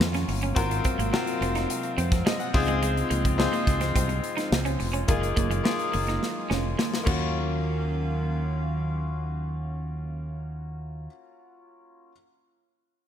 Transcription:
Already playing: D#3 F#3 A#3 C#4 F4 F#4 A#4 F5
0.00 F2, snare
0.14 C#4, snare, closed hi-hat
0.28 G1, muted clean electric guitar stroke, open hi-hat
0.42 C#4, closed hi-hat
0.55 G#1 C3 G#3 C4 F4 F#4 A#4 F5, kick, closed hi-hat
0.71 muted clean electric guitar stroke, closed hi-hat
0.84 C4, kick, closed hi-hat
0.99 G#1 A#3, closed hi-hat
1.12 C4 F4 F#4 A#4, muted clean electric guitar stroke, snare
1.27 closed hi-hat
1.41 F1 C4, closed hi-hat
1.55 D#4, snare, closed hi-hat
1.70 closed hi-hat
1.83 closed hi-hat
1.97 F2 C4 C5, closed hi-hat
2.12 kick, snare, closed hi-hat
2.25 G#3 D#5, snare
2.40 F#5, closed hi-hat
2.54 C#2 C#3 F3 C4 D#4 F4 G#4, muted clean electric guitar stroke, kick, open hi-hat
2.68 G#3, closed hi-hat
2.83 G#3, closed hi-hat
2.97 closed hi-hat
3.10 C#2 A#3, closed hi-hat
3.25 muted clean electric guitar stroke, kick, closed hi-hat
3.38 C4 D#4 F4 G#4, snare
3.53 A#3, closed hi-hat
3.67 C#2, muted clean electric guitar stroke, kick, snare, closed hi-hat
3.81 C4, snare, closed hi-hat
3.96 C2 C4, kick, closed hi-hat
4.09 muted clean electric guitar stroke, closed hi-hat
4.24 closed hi-hat
4.37 D#4, snare, closed hi-hat
4.52 C#2, snare
4.65 C#4, closed hi-hat
4.80 F1, muted clean electric guitar stroke, open hi-hat
4.93 C#4, closed hi-hat
5.08 F#1 D#3 F#3 A#3 D#4 F4 G#4, kick, closed hi-hat
5.22 muted clean electric guitar stroke, closed hi-hat
5.36 F#1 A#3, kick, closed hi-hat
5.51 G#3, closed hi-hat
5.64 A#3 D#4 F4 G#4, muted clean electric guitar stroke, snare
5.79 closed hi-hat
5.93 F#1 A#3, open hi-hat
6.07 D#4, snare, closed hi-hat
6.23 snare
6.50 F1 C#4, snare
6.79 A#3, snare
6.94 snare
7.03 D#2 D#3 F#3 A#3 C#4 F4 F5, kick, crash
7.08 F#4

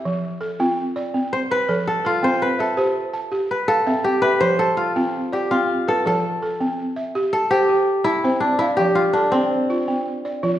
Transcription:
Already playing: E4 G4 A4 E5
0.05 F3
0.41 A4
0.60 C4 F4
0.96 D5
1.14 C4
1.33 C5
1.51 B4
1.69 F3 A4
1.87 A4
2.05 F4 A4
2.23 C4 C5
2.42 B4
2.59 A4 E5
2.77 G4 C5
3.13 A5
3.32 G4
3.51 B4
3.68 A4 F5
3.87 C4 E5
4.04 G4
4.22 B4 E5
4.41 F3 C5
4.59 A4
4.77 F4
4.96 C4 F4
5.32 G4 D5
5.51 C4 F4
5.88 A4 B4
6.05 F3 A4
6.42 A4
6.61 C4
6.96 E5
7.15 G4
7.33 A4
7.51 G4 C5
7.69 G4
8.04 E4 A5
8.24 C4 C5
8.40 D4
8.59 E4 F5
8.77 F3 G4
8.95 F4
9.13 D4 A4
9.32 C4
9.70 F4
9.88 C4
10.25 D5
10.43 F3 F4

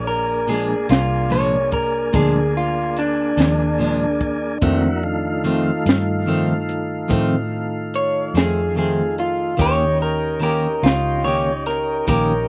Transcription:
Already playing: A#1 A#3 D4 G#4
0.07 A#4
0.47 A#2 F3 G#3 D4 G#4, closed hi-hat
0.89 C2 F4, snare, closed hi-hat
1.30 A#2 F3 G#3 D4 C#5
1.72 A#4, kick, closed hi-hat
2.13 D2 A#2 F3 G#3 D4 G#4, kick, closed hi-hat
2.57 F4
2.97 D4, closed hi-hat
3.37 D#2 F3 G#3 D4, snare, closed hi-hat
3.79 A#2 F3 G#3 D4
4.21 kick, closed hi-hat
4.62 F2 D#3 A3 A#3 C4 E4 F#4, kick, closed hi-hat
5.03 D#3 A3 F4
5.44 F2 D#3 A3 C4, closed hi-hat
5.86 G2, snare, closed hi-hat
6.26 F2 D#3 A3 C4
6.69 closed hi-hat
7.08 F2 A2 D#3 A3 C4, kick, closed hi-hat
7.94 C#5, closed hi-hat
8.34 F2 D#3 A3 C4 G#4, snare, closed hi-hat
8.75 F2 D#3 A3 C4 G#4
9.18 F4, closed hi-hat
9.57 D#2 D#3 A#3 C#4 D#4 G4, kick, closed hi-hat
9.62 C#5
10.02 A#4
10.40 D#3 A#3 C#4 G4 A#4, closed hi-hat
10.83 C#2 F4, snare, closed hi-hat
11.24 D#3 A#3 C#4 G4 C#5
11.66 A#4, snare, closed hi-hat
12.07 A#1 D#3 A#3 C#4 G4 A#4, kick, closed hi-hat

